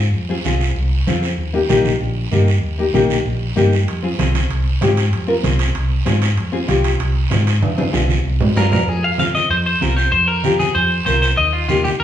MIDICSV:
0, 0, Header, 1, 5, 480
1, 0, Start_track
1, 0, Key_signature, -4, "minor"
1, 0, Tempo, 312175
1, 212, Time_signature, 4, 2, 24, 8
1, 18508, End_track
2, 0, Start_track
2, 0, Title_t, "Clean electric guitar"
2, 0, Program_c, 0, 27
2, 13184, Note_on_c, 0, 70, 81
2, 13399, Note_off_c, 0, 70, 0
2, 13420, Note_on_c, 0, 70, 77
2, 13666, Note_off_c, 0, 70, 0
2, 13666, Note_on_c, 0, 68, 86
2, 13903, Note_off_c, 0, 68, 0
2, 13904, Note_on_c, 0, 77, 87
2, 14119, Note_off_c, 0, 77, 0
2, 14139, Note_on_c, 0, 77, 95
2, 14216, Note_off_c, 0, 77, 0
2, 14372, Note_on_c, 0, 75, 80
2, 14610, Note_off_c, 0, 75, 0
2, 14616, Note_on_c, 0, 72, 89
2, 14693, Note_off_c, 0, 72, 0
2, 14857, Note_on_c, 0, 72, 80
2, 15094, Note_off_c, 0, 72, 0
2, 15094, Note_on_c, 0, 70, 82
2, 15323, Note_off_c, 0, 70, 0
2, 15323, Note_on_c, 0, 72, 80
2, 15539, Note_off_c, 0, 72, 0
2, 15558, Note_on_c, 0, 72, 89
2, 15786, Note_off_c, 0, 72, 0
2, 15802, Note_on_c, 0, 70, 89
2, 16252, Note_off_c, 0, 70, 0
2, 16288, Note_on_c, 0, 68, 74
2, 16524, Note_on_c, 0, 72, 91
2, 16536, Note_off_c, 0, 68, 0
2, 16974, Note_off_c, 0, 72, 0
2, 17006, Note_on_c, 0, 72, 85
2, 17233, Note_off_c, 0, 72, 0
2, 17252, Note_on_c, 0, 72, 74
2, 17329, Note_off_c, 0, 72, 0
2, 17488, Note_on_c, 0, 75, 96
2, 17713, Note_off_c, 0, 75, 0
2, 17728, Note_on_c, 0, 65, 72
2, 17948, Note_off_c, 0, 65, 0
2, 17967, Note_on_c, 0, 65, 79
2, 18192, Note_off_c, 0, 65, 0
2, 18209, Note_on_c, 0, 67, 75
2, 18285, Note_off_c, 0, 67, 0
2, 18448, Note_on_c, 0, 70, 81
2, 18508, Note_off_c, 0, 70, 0
2, 18508, End_track
3, 0, Start_track
3, 0, Title_t, "Nylon-string guitar"
3, 0, Program_c, 1, 24
3, 447, Note_on_c, 1, 60, 66
3, 455, Note_on_c, 1, 65, 64
3, 463, Note_on_c, 1, 68, 83
3, 534, Note_off_c, 1, 60, 0
3, 538, Note_off_c, 1, 65, 0
3, 540, Note_off_c, 1, 68, 0
3, 691, Note_on_c, 1, 60, 76
3, 700, Note_on_c, 1, 65, 78
3, 704, Note_on_c, 1, 68, 87
3, 1028, Note_off_c, 1, 60, 0
3, 1030, Note_off_c, 1, 65, 0
3, 1034, Note_off_c, 1, 68, 0
3, 1646, Note_on_c, 1, 60, 75
3, 1655, Note_on_c, 1, 65, 75
3, 1663, Note_on_c, 1, 68, 88
3, 1901, Note_off_c, 1, 60, 0
3, 1904, Note_off_c, 1, 65, 0
3, 1909, Note_off_c, 1, 68, 0
3, 2357, Note_on_c, 1, 58, 67
3, 2364, Note_on_c, 1, 63, 66
3, 2376, Note_on_c, 1, 67, 79
3, 2448, Note_off_c, 1, 58, 0
3, 2451, Note_off_c, 1, 63, 0
3, 2457, Note_off_c, 1, 67, 0
3, 2600, Note_on_c, 1, 58, 80
3, 2607, Note_on_c, 1, 63, 76
3, 2610, Note_on_c, 1, 67, 85
3, 2941, Note_off_c, 1, 58, 0
3, 2943, Note_off_c, 1, 63, 0
3, 2946, Note_off_c, 1, 67, 0
3, 3557, Note_on_c, 1, 58, 80
3, 3564, Note_on_c, 1, 63, 75
3, 3570, Note_on_c, 1, 67, 86
3, 3815, Note_off_c, 1, 58, 0
3, 3819, Note_off_c, 1, 63, 0
3, 3821, Note_off_c, 1, 67, 0
3, 4276, Note_on_c, 1, 58, 68
3, 4288, Note_on_c, 1, 63, 61
3, 4296, Note_on_c, 1, 67, 79
3, 4366, Note_off_c, 1, 58, 0
3, 4372, Note_off_c, 1, 63, 0
3, 4375, Note_off_c, 1, 67, 0
3, 4513, Note_on_c, 1, 58, 76
3, 4522, Note_on_c, 1, 63, 73
3, 4527, Note_on_c, 1, 67, 86
3, 4857, Note_off_c, 1, 58, 0
3, 4861, Note_off_c, 1, 63, 0
3, 4863, Note_off_c, 1, 67, 0
3, 5470, Note_on_c, 1, 58, 75
3, 5479, Note_on_c, 1, 63, 72
3, 5486, Note_on_c, 1, 67, 85
3, 5732, Note_off_c, 1, 58, 0
3, 5734, Note_off_c, 1, 63, 0
3, 5739, Note_off_c, 1, 67, 0
3, 6191, Note_on_c, 1, 60, 74
3, 6200, Note_on_c, 1, 65, 62
3, 6208, Note_on_c, 1, 68, 77
3, 6284, Note_off_c, 1, 60, 0
3, 6285, Note_off_c, 1, 65, 0
3, 6292, Note_off_c, 1, 68, 0
3, 6434, Note_on_c, 1, 60, 85
3, 6443, Note_on_c, 1, 65, 71
3, 6445, Note_on_c, 1, 68, 89
3, 6777, Note_off_c, 1, 60, 0
3, 6779, Note_off_c, 1, 65, 0
3, 6782, Note_off_c, 1, 68, 0
3, 7395, Note_on_c, 1, 60, 79
3, 7398, Note_on_c, 1, 65, 68
3, 7406, Note_on_c, 1, 67, 85
3, 7653, Note_off_c, 1, 60, 0
3, 7653, Note_off_c, 1, 65, 0
3, 7658, Note_off_c, 1, 67, 0
3, 8108, Note_on_c, 1, 60, 69
3, 8115, Note_on_c, 1, 65, 70
3, 8122, Note_on_c, 1, 70, 77
3, 8201, Note_off_c, 1, 60, 0
3, 8205, Note_off_c, 1, 65, 0
3, 8208, Note_off_c, 1, 70, 0
3, 8347, Note_on_c, 1, 60, 72
3, 8354, Note_on_c, 1, 65, 74
3, 8362, Note_on_c, 1, 68, 81
3, 8693, Note_off_c, 1, 60, 0
3, 8696, Note_off_c, 1, 65, 0
3, 8700, Note_off_c, 1, 68, 0
3, 9308, Note_on_c, 1, 60, 81
3, 9314, Note_on_c, 1, 65, 67
3, 9322, Note_on_c, 1, 68, 89
3, 9570, Note_off_c, 1, 60, 0
3, 9571, Note_off_c, 1, 65, 0
3, 9572, Note_off_c, 1, 68, 0
3, 10027, Note_on_c, 1, 60, 79
3, 10031, Note_on_c, 1, 65, 65
3, 10039, Note_on_c, 1, 68, 81
3, 10120, Note_off_c, 1, 60, 0
3, 10124, Note_off_c, 1, 65, 0
3, 10124, Note_off_c, 1, 68, 0
3, 10261, Note_on_c, 1, 60, 80
3, 10272, Note_on_c, 1, 65, 77
3, 10279, Note_on_c, 1, 67, 92
3, 10609, Note_off_c, 1, 60, 0
3, 10615, Note_off_c, 1, 65, 0
3, 10618, Note_off_c, 1, 67, 0
3, 11226, Note_on_c, 1, 60, 76
3, 11234, Note_on_c, 1, 65, 72
3, 11245, Note_on_c, 1, 68, 88
3, 11488, Note_off_c, 1, 60, 0
3, 11493, Note_off_c, 1, 65, 0
3, 11495, Note_off_c, 1, 68, 0
3, 11953, Note_on_c, 1, 60, 76
3, 11959, Note_on_c, 1, 65, 65
3, 11967, Note_on_c, 1, 68, 81
3, 12043, Note_off_c, 1, 60, 0
3, 12046, Note_off_c, 1, 65, 0
3, 12050, Note_off_c, 1, 68, 0
3, 12185, Note_on_c, 1, 60, 72
3, 12191, Note_on_c, 1, 65, 66
3, 12200, Note_on_c, 1, 68, 81
3, 12532, Note_off_c, 1, 60, 0
3, 12533, Note_off_c, 1, 65, 0
3, 12539, Note_off_c, 1, 68, 0
3, 13160, Note_on_c, 1, 60, 72
3, 13172, Note_on_c, 1, 65, 72
3, 13178, Note_on_c, 1, 68, 89
3, 13415, Note_off_c, 1, 60, 0
3, 13421, Note_off_c, 1, 65, 0
3, 13424, Note_off_c, 1, 68, 0
3, 14123, Note_on_c, 1, 60, 63
3, 14131, Note_on_c, 1, 65, 58
3, 14137, Note_on_c, 1, 68, 66
3, 14461, Note_off_c, 1, 60, 0
3, 14465, Note_off_c, 1, 65, 0
3, 14468, Note_off_c, 1, 68, 0
3, 15084, Note_on_c, 1, 60, 68
3, 15092, Note_on_c, 1, 65, 57
3, 15097, Note_on_c, 1, 68, 68
3, 15423, Note_off_c, 1, 60, 0
3, 15424, Note_off_c, 1, 65, 0
3, 15428, Note_off_c, 1, 68, 0
3, 16045, Note_on_c, 1, 60, 63
3, 16055, Note_on_c, 1, 65, 53
3, 16059, Note_on_c, 1, 67, 73
3, 16384, Note_off_c, 1, 60, 0
3, 16386, Note_off_c, 1, 65, 0
3, 16390, Note_off_c, 1, 67, 0
3, 17007, Note_on_c, 1, 60, 70
3, 17014, Note_on_c, 1, 65, 57
3, 17022, Note_on_c, 1, 70, 71
3, 17345, Note_off_c, 1, 60, 0
3, 17348, Note_off_c, 1, 65, 0
3, 17352, Note_off_c, 1, 70, 0
3, 17975, Note_on_c, 1, 58, 64
3, 17985, Note_on_c, 1, 63, 58
3, 17986, Note_on_c, 1, 67, 71
3, 18310, Note_off_c, 1, 58, 0
3, 18311, Note_off_c, 1, 63, 0
3, 18315, Note_off_c, 1, 67, 0
3, 18508, End_track
4, 0, Start_track
4, 0, Title_t, "Fingered electric bass"
4, 0, Program_c, 2, 33
4, 0, Note_on_c, 2, 44, 81
4, 210, Note_off_c, 2, 44, 0
4, 210, Note_on_c, 2, 41, 84
4, 594, Note_off_c, 2, 41, 0
4, 686, Note_on_c, 2, 36, 90
4, 1072, Note_off_c, 2, 36, 0
4, 1164, Note_on_c, 2, 36, 104
4, 1550, Note_off_c, 2, 36, 0
4, 1647, Note_on_c, 2, 41, 80
4, 2123, Note_off_c, 2, 41, 0
4, 2123, Note_on_c, 2, 39, 98
4, 2510, Note_off_c, 2, 39, 0
4, 2602, Note_on_c, 2, 34, 89
4, 2989, Note_off_c, 2, 34, 0
4, 3086, Note_on_c, 2, 34, 96
4, 3471, Note_off_c, 2, 34, 0
4, 3564, Note_on_c, 2, 43, 83
4, 4037, Note_off_c, 2, 43, 0
4, 4037, Note_on_c, 2, 39, 85
4, 4426, Note_off_c, 2, 39, 0
4, 4522, Note_on_c, 2, 34, 81
4, 4908, Note_off_c, 2, 34, 0
4, 5001, Note_on_c, 2, 34, 96
4, 5388, Note_off_c, 2, 34, 0
4, 5478, Note_on_c, 2, 43, 74
4, 5959, Note_off_c, 2, 43, 0
4, 5959, Note_on_c, 2, 41, 88
4, 6346, Note_off_c, 2, 41, 0
4, 6438, Note_on_c, 2, 36, 84
4, 6825, Note_off_c, 2, 36, 0
4, 6920, Note_on_c, 2, 36, 95
4, 7307, Note_off_c, 2, 36, 0
4, 7402, Note_on_c, 2, 44, 82
4, 7883, Note_off_c, 2, 44, 0
4, 7883, Note_on_c, 2, 41, 95
4, 8268, Note_off_c, 2, 41, 0
4, 8361, Note_on_c, 2, 36, 84
4, 8747, Note_off_c, 2, 36, 0
4, 8842, Note_on_c, 2, 36, 104
4, 9227, Note_off_c, 2, 36, 0
4, 9322, Note_on_c, 2, 44, 86
4, 9796, Note_off_c, 2, 44, 0
4, 9796, Note_on_c, 2, 41, 88
4, 10184, Note_off_c, 2, 41, 0
4, 10275, Note_on_c, 2, 36, 86
4, 10663, Note_off_c, 2, 36, 0
4, 10760, Note_on_c, 2, 36, 106
4, 11146, Note_off_c, 2, 36, 0
4, 11244, Note_on_c, 2, 44, 82
4, 11723, Note_off_c, 2, 44, 0
4, 11723, Note_on_c, 2, 41, 96
4, 12108, Note_off_c, 2, 41, 0
4, 12198, Note_on_c, 2, 36, 86
4, 12585, Note_off_c, 2, 36, 0
4, 12683, Note_on_c, 2, 36, 94
4, 12876, Note_off_c, 2, 36, 0
4, 12920, Note_on_c, 2, 44, 73
4, 13139, Note_off_c, 2, 44, 0
4, 13160, Note_on_c, 2, 43, 72
4, 13378, Note_off_c, 2, 43, 0
4, 13403, Note_on_c, 2, 41, 77
4, 13620, Note_off_c, 2, 41, 0
4, 13637, Note_on_c, 2, 41, 76
4, 14409, Note_off_c, 2, 41, 0
4, 14598, Note_on_c, 2, 41, 85
4, 14986, Note_off_c, 2, 41, 0
4, 15086, Note_on_c, 2, 36, 77
4, 15471, Note_off_c, 2, 36, 0
4, 15561, Note_on_c, 2, 41, 87
4, 16333, Note_off_c, 2, 41, 0
4, 16526, Note_on_c, 2, 41, 82
4, 16912, Note_off_c, 2, 41, 0
4, 17012, Note_on_c, 2, 36, 83
4, 17395, Note_off_c, 2, 36, 0
4, 17492, Note_on_c, 2, 39, 85
4, 18260, Note_off_c, 2, 39, 0
4, 18452, Note_on_c, 2, 39, 87
4, 18508, Note_off_c, 2, 39, 0
4, 18508, End_track
5, 0, Start_track
5, 0, Title_t, "Drums"
5, 215, Note_on_c, 9, 74, 71
5, 369, Note_off_c, 9, 74, 0
5, 690, Note_on_c, 9, 73, 65
5, 695, Note_on_c, 9, 63, 83
5, 844, Note_off_c, 9, 73, 0
5, 849, Note_off_c, 9, 63, 0
5, 933, Note_on_c, 9, 73, 70
5, 1087, Note_off_c, 9, 73, 0
5, 1173, Note_on_c, 9, 74, 64
5, 1327, Note_off_c, 9, 74, 0
5, 1647, Note_on_c, 9, 63, 67
5, 1649, Note_on_c, 9, 73, 60
5, 1801, Note_off_c, 9, 63, 0
5, 1803, Note_off_c, 9, 73, 0
5, 1890, Note_on_c, 9, 73, 60
5, 2044, Note_off_c, 9, 73, 0
5, 2125, Note_on_c, 9, 74, 73
5, 2279, Note_off_c, 9, 74, 0
5, 2605, Note_on_c, 9, 73, 71
5, 2608, Note_on_c, 9, 63, 84
5, 2759, Note_off_c, 9, 73, 0
5, 2762, Note_off_c, 9, 63, 0
5, 2846, Note_on_c, 9, 73, 67
5, 2848, Note_on_c, 9, 63, 66
5, 3000, Note_off_c, 9, 73, 0
5, 3002, Note_off_c, 9, 63, 0
5, 3086, Note_on_c, 9, 74, 64
5, 3239, Note_off_c, 9, 74, 0
5, 3565, Note_on_c, 9, 73, 59
5, 3570, Note_on_c, 9, 63, 75
5, 3719, Note_off_c, 9, 73, 0
5, 3723, Note_off_c, 9, 63, 0
5, 3808, Note_on_c, 9, 73, 66
5, 3961, Note_off_c, 9, 73, 0
5, 4052, Note_on_c, 9, 74, 72
5, 4206, Note_off_c, 9, 74, 0
5, 4529, Note_on_c, 9, 63, 81
5, 4532, Note_on_c, 9, 73, 60
5, 4683, Note_off_c, 9, 63, 0
5, 4686, Note_off_c, 9, 73, 0
5, 4771, Note_on_c, 9, 63, 58
5, 4771, Note_on_c, 9, 73, 69
5, 4924, Note_off_c, 9, 63, 0
5, 4925, Note_off_c, 9, 73, 0
5, 5010, Note_on_c, 9, 74, 64
5, 5164, Note_off_c, 9, 74, 0
5, 5483, Note_on_c, 9, 63, 63
5, 5486, Note_on_c, 9, 73, 62
5, 5637, Note_off_c, 9, 63, 0
5, 5639, Note_off_c, 9, 73, 0
5, 5730, Note_on_c, 9, 73, 64
5, 5884, Note_off_c, 9, 73, 0
5, 5967, Note_on_c, 9, 74, 72
5, 5969, Note_on_c, 9, 65, 66
5, 6121, Note_off_c, 9, 74, 0
5, 6123, Note_off_c, 9, 65, 0
5, 6442, Note_on_c, 9, 63, 84
5, 6449, Note_on_c, 9, 65, 61
5, 6451, Note_on_c, 9, 73, 65
5, 6596, Note_off_c, 9, 63, 0
5, 6603, Note_off_c, 9, 65, 0
5, 6605, Note_off_c, 9, 73, 0
5, 6681, Note_on_c, 9, 63, 64
5, 6686, Note_on_c, 9, 73, 69
5, 6691, Note_on_c, 9, 65, 64
5, 6835, Note_off_c, 9, 63, 0
5, 6840, Note_off_c, 9, 73, 0
5, 6845, Note_off_c, 9, 65, 0
5, 6927, Note_on_c, 9, 65, 61
5, 6933, Note_on_c, 9, 74, 64
5, 7081, Note_off_c, 9, 65, 0
5, 7086, Note_off_c, 9, 74, 0
5, 7405, Note_on_c, 9, 63, 67
5, 7410, Note_on_c, 9, 73, 59
5, 7411, Note_on_c, 9, 65, 65
5, 7411, Note_on_c, 9, 66, 65
5, 7559, Note_off_c, 9, 63, 0
5, 7564, Note_off_c, 9, 73, 0
5, 7565, Note_off_c, 9, 65, 0
5, 7565, Note_off_c, 9, 66, 0
5, 7647, Note_on_c, 9, 65, 60
5, 7650, Note_on_c, 9, 73, 61
5, 7801, Note_off_c, 9, 65, 0
5, 7804, Note_off_c, 9, 73, 0
5, 7887, Note_on_c, 9, 65, 56
5, 7892, Note_on_c, 9, 74, 69
5, 8041, Note_off_c, 9, 65, 0
5, 8046, Note_off_c, 9, 74, 0
5, 8363, Note_on_c, 9, 63, 86
5, 8368, Note_on_c, 9, 65, 62
5, 8371, Note_on_c, 9, 73, 67
5, 8517, Note_off_c, 9, 63, 0
5, 8522, Note_off_c, 9, 65, 0
5, 8525, Note_off_c, 9, 73, 0
5, 8599, Note_on_c, 9, 65, 66
5, 8611, Note_on_c, 9, 73, 67
5, 8753, Note_off_c, 9, 65, 0
5, 8765, Note_off_c, 9, 73, 0
5, 8842, Note_on_c, 9, 65, 65
5, 8854, Note_on_c, 9, 74, 65
5, 8995, Note_off_c, 9, 65, 0
5, 9008, Note_off_c, 9, 74, 0
5, 9321, Note_on_c, 9, 65, 58
5, 9321, Note_on_c, 9, 66, 62
5, 9323, Note_on_c, 9, 63, 63
5, 9326, Note_on_c, 9, 73, 62
5, 9475, Note_off_c, 9, 65, 0
5, 9475, Note_off_c, 9, 66, 0
5, 9477, Note_off_c, 9, 63, 0
5, 9480, Note_off_c, 9, 73, 0
5, 9560, Note_on_c, 9, 65, 66
5, 9569, Note_on_c, 9, 73, 69
5, 9714, Note_off_c, 9, 65, 0
5, 9722, Note_off_c, 9, 73, 0
5, 9801, Note_on_c, 9, 65, 58
5, 9804, Note_on_c, 9, 74, 65
5, 9955, Note_off_c, 9, 65, 0
5, 9958, Note_off_c, 9, 74, 0
5, 10279, Note_on_c, 9, 63, 81
5, 10281, Note_on_c, 9, 65, 62
5, 10286, Note_on_c, 9, 73, 63
5, 10433, Note_off_c, 9, 63, 0
5, 10434, Note_off_c, 9, 65, 0
5, 10440, Note_off_c, 9, 73, 0
5, 10523, Note_on_c, 9, 65, 65
5, 10527, Note_on_c, 9, 73, 69
5, 10677, Note_off_c, 9, 65, 0
5, 10681, Note_off_c, 9, 73, 0
5, 10764, Note_on_c, 9, 65, 68
5, 10767, Note_on_c, 9, 74, 63
5, 10918, Note_off_c, 9, 65, 0
5, 10921, Note_off_c, 9, 74, 0
5, 11244, Note_on_c, 9, 65, 65
5, 11244, Note_on_c, 9, 66, 61
5, 11247, Note_on_c, 9, 63, 74
5, 11247, Note_on_c, 9, 73, 62
5, 11398, Note_off_c, 9, 65, 0
5, 11398, Note_off_c, 9, 66, 0
5, 11400, Note_off_c, 9, 63, 0
5, 11401, Note_off_c, 9, 73, 0
5, 11488, Note_on_c, 9, 65, 64
5, 11492, Note_on_c, 9, 73, 64
5, 11642, Note_off_c, 9, 65, 0
5, 11645, Note_off_c, 9, 73, 0
5, 11723, Note_on_c, 9, 63, 80
5, 11725, Note_on_c, 9, 65, 74
5, 11877, Note_off_c, 9, 63, 0
5, 11879, Note_off_c, 9, 65, 0
5, 11965, Note_on_c, 9, 65, 66
5, 11971, Note_on_c, 9, 63, 76
5, 12118, Note_off_c, 9, 65, 0
5, 12124, Note_off_c, 9, 63, 0
5, 12199, Note_on_c, 9, 65, 69
5, 12207, Note_on_c, 9, 63, 75
5, 12211, Note_on_c, 9, 73, 67
5, 12353, Note_off_c, 9, 65, 0
5, 12361, Note_off_c, 9, 63, 0
5, 12364, Note_off_c, 9, 73, 0
5, 12439, Note_on_c, 9, 63, 70
5, 12449, Note_on_c, 9, 73, 62
5, 12593, Note_off_c, 9, 63, 0
5, 12603, Note_off_c, 9, 73, 0
5, 12690, Note_on_c, 9, 74, 65
5, 12844, Note_off_c, 9, 74, 0
5, 12922, Note_on_c, 9, 64, 92
5, 12926, Note_on_c, 9, 66, 90
5, 13076, Note_off_c, 9, 64, 0
5, 13079, Note_off_c, 9, 66, 0
5, 13165, Note_on_c, 9, 66, 84
5, 13171, Note_on_c, 9, 73, 62
5, 13319, Note_off_c, 9, 66, 0
5, 13325, Note_off_c, 9, 73, 0
5, 13397, Note_on_c, 9, 64, 82
5, 13406, Note_on_c, 9, 66, 88
5, 13418, Note_on_c, 9, 73, 66
5, 13551, Note_off_c, 9, 64, 0
5, 13559, Note_off_c, 9, 66, 0
5, 13571, Note_off_c, 9, 73, 0
5, 13658, Note_on_c, 9, 74, 64
5, 13812, Note_off_c, 9, 74, 0
5, 14118, Note_on_c, 9, 63, 83
5, 14136, Note_on_c, 9, 73, 57
5, 14272, Note_off_c, 9, 63, 0
5, 14290, Note_off_c, 9, 73, 0
5, 14363, Note_on_c, 9, 63, 61
5, 14377, Note_on_c, 9, 73, 60
5, 14516, Note_off_c, 9, 63, 0
5, 14531, Note_off_c, 9, 73, 0
5, 14617, Note_on_c, 9, 74, 65
5, 14771, Note_off_c, 9, 74, 0
5, 15081, Note_on_c, 9, 63, 65
5, 15101, Note_on_c, 9, 73, 57
5, 15235, Note_off_c, 9, 63, 0
5, 15255, Note_off_c, 9, 73, 0
5, 15340, Note_on_c, 9, 73, 61
5, 15494, Note_off_c, 9, 73, 0
5, 15572, Note_on_c, 9, 74, 61
5, 15726, Note_off_c, 9, 74, 0
5, 16048, Note_on_c, 9, 63, 85
5, 16053, Note_on_c, 9, 73, 60
5, 16202, Note_off_c, 9, 63, 0
5, 16207, Note_off_c, 9, 73, 0
5, 16292, Note_on_c, 9, 63, 63
5, 16295, Note_on_c, 9, 73, 66
5, 16446, Note_off_c, 9, 63, 0
5, 16449, Note_off_c, 9, 73, 0
5, 16535, Note_on_c, 9, 74, 64
5, 16689, Note_off_c, 9, 74, 0
5, 17010, Note_on_c, 9, 63, 67
5, 17013, Note_on_c, 9, 73, 60
5, 17164, Note_off_c, 9, 63, 0
5, 17167, Note_off_c, 9, 73, 0
5, 17259, Note_on_c, 9, 73, 69
5, 17413, Note_off_c, 9, 73, 0
5, 17499, Note_on_c, 9, 74, 69
5, 17653, Note_off_c, 9, 74, 0
5, 17975, Note_on_c, 9, 63, 82
5, 17975, Note_on_c, 9, 73, 61
5, 18128, Note_off_c, 9, 63, 0
5, 18129, Note_off_c, 9, 73, 0
5, 18213, Note_on_c, 9, 63, 68
5, 18216, Note_on_c, 9, 73, 64
5, 18367, Note_off_c, 9, 63, 0
5, 18370, Note_off_c, 9, 73, 0
5, 18508, End_track
0, 0, End_of_file